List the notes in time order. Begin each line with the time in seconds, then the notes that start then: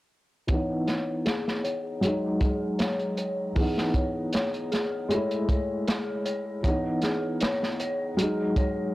0.47 E3 B3 C#5, kick, closed hi-hat
0.53 D#4
0.87 C#5, snare, closed hi-hat
1.25 G#4, snare, closed hi-hat
1.48 snare
1.64 C#5, closed hi-hat
2.01 F#3 G#3 C#5, closed hi-hat
2.07 D#4
2.41 G#4, kick, closed hi-hat
2.79 C#5, snare, closed hi-hat
2.99 closed hi-hat
3.17 C#5, closed hi-hat
3.55 E3 B3 G#4, kick, open hi-hat
3.61 D#4
3.78 snare
3.94 C#5, kick, closed hi-hat
4.33 C#5, snare, closed hi-hat
4.54 closed hi-hat
4.72 G#4, snare, closed hi-hat
5.09 G#3 A3 C#5, closed hi-hat
5.14 E4
5.31 closed hi-hat
5.49 C#5, kick, closed hi-hat
5.87 G#4, snare, closed hi-hat
6.25 C#5, closed hi-hat
6.63 E3 B3 C#5, kick, closed hi-hat
6.68 D#4
7.02 G#4, snare, closed hi-hat
7.40 C#5, snare, closed hi-hat
7.63 snare
7.80 C#5, closed hi-hat
8.17 F#3 G#3 G#4, closed hi-hat
8.22 D#4
8.56 C#5, kick, closed hi-hat